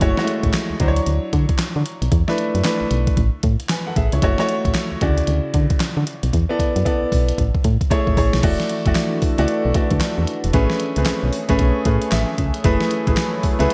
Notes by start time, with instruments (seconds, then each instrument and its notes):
0.01 fm bass F#1, grand piano A3 E4 F#4 C#5, kick, closed hi-hat
0.17 grand piano G#3 E4 F#4 C#5, snare
0.24 grand piano A3, closed hi-hat
0.43 fm bass A1, kick, closed hi-hat
0.53 snare, clap, closed hi-hat
0.70 fm bass D2
0.80 fm bass D2, grand piano F#3 D4 E4 C5, kick, closed hi-hat
0.88 grand piano C#5
0.96 closed hi-hat
1.06 fm bass D2, closed hi-hat
1.33 fm bass D3, kick, closed hi-hat
1.49 kick, closed hi-hat
1.59 snare, clap, closed hi-hat
1.76 fm bass D3
1.86 closed hi-hat
2.02 fm bass B1, closed hi-hat
2.12 fm bass E2, kick, closed hi-hat
2.28 grand piano A3 D4 E4 B4, snare
2.38 closed hi-hat
2.55 fm bass F#2, closed hi-hat
2.64 grand piano A3 D4 E4 B4, snare, clap, closed hi-hat
2.81 fm bass B1
2.91 fm bass B1, closed hi-hat
3.07 kick, closed hi-hat
3.17 fm bass A1, kick, closed hi-hat
3.43 fm bass A2, kick, closed hi-hat
3.60 closed hi-hat
3.69 grand piano B4 G#5, snare, clap, closed hi-hat
3.87 grand piano A4 F#5
3.96 fm bass A1, grand piano G#4 E5, kick, closed hi-hat
4.12 fm bass C#2, grand piano E4 C#5, closed hi-hat
4.22 fm bass F#1, grand piano A3 E4 F#4 C#5, kick, closed hi-hat
4.38 grand piano A3 E4 F#4 C#5, snare
4.49 closed hi-hat
4.65 fm bass A1, kick, closed hi-hat
4.74 snare, clap, closed hi-hat
4.92 fm bass D2
5.01 fm bass D2, grand piano C#3 E4 F#4 D5, kick, closed hi-hat
5.18 closed hi-hat
5.27 fm bass D2, closed hi-hat
5.54 fm bass D3, kick, closed hi-hat
5.70 kick, closed hi-hat
5.80 snare, clap, closed hi-hat
5.97 fm bass D3
6.07 closed hi-hat
6.23 fm bass B1, closed hi-hat
6.33 fm bass E2, kick, closed hi-hat
6.49 grand piano B3 E4 A4 D5
6.59 kick, closed hi-hat
6.76 fm bass F#2, closed hi-hat
6.85 grand piano B3 E4 A4 D5, kick, closed hi-hat
7.02 fm bass B1
7.12 fm bass B1, kick, open hi-hat
7.29 closed hi-hat
7.38 fm bass A1, kick, closed hi-hat
7.55 kick
7.64 fm bass A2, kick, closed hi-hat
7.81 kick, closed hi-hat
7.90 grand piano A3 E4 G#4 C#5, kick, closed hi-hat
8.07 fm bass G#1, kick
8.17 fm bass A1, grand piano A3 E4 G#4 C#5, kick, open hi-hat
8.33 fm bass B1, snare, closed hi-hat
8.43 fm bass E1, analog synth pad E3 D4 F#4 A4, grand piano A3 E4 F#4 D5, kick, closed hi-hat, crash
8.60 snare
8.69 closed hi-hat
8.86 fm bass F#1, grand piano A3 E4 F#4 D5, kick, closed hi-hat
8.95 snare, clap, closed hi-hat
9.22 fm bass C#2, kick, open hi-hat
9.38 fm bass C#2, grand piano A3 E4 F#4 D5, closed hi-hat
9.48 closed hi-hat
9.65 fm bass B1
9.74 grand piano A3 E4 F#4 D5, kick, closed hi-hat
9.90 fm bass D2, kick, closed hi-hat
10.01 snare, clap, closed hi-hat
10.18 fm bass E2
10.27 closed hi-hat
10.44 fm bass E1, closed hi-hat
10.53 fm bass A1, grand piano A3 C#4 G#4 B4, analog synth pad A3 C#4 G#4, kick, closed hi-hat
10.70 snare
10.80 closed hi-hat
10.96 fm bass C#2, grand piano A3 C4 G#4 B4, closed hi-hat
11.03 grand piano C#4, snare, clap, closed hi-hat
11.23 fm bass B1
11.33 open hi-hat
11.49 fm bass A1, grand piano A3 C#4 G#4 B4, kick, closed hi-hat
11.59 fm bass B1, kick, closed hi-hat
11.85 fm bass A2, grand piano A3 C#4 G#4 B4, kick, closed hi-hat
12.02 closed hi-hat
12.12 fm bass A1, grand piano E5, snare, clap, closed hi-hat
12.38 fm bass C#2, kick, closed hi-hat
12.54 closed hi-hat
12.64 fm bass F#1, analog synth pad F#3 A3 E4 G#4 B4, grand piano A3 E4 G#4 B4, kick, closed hi-hat
12.81 snare
12.91 closed hi-hat
13.07 fm bass A1, grand piano A3 E4 G#4 B4, kick, closed hi-hat
13.17 snare, clap, closed hi-hat
13.43 fm bass C#2, kick, open hi-hat
13.59 fm bass C#2, grand piano A3 E4 G#4 B4, closed hi-hat
13.70 closed hi-hat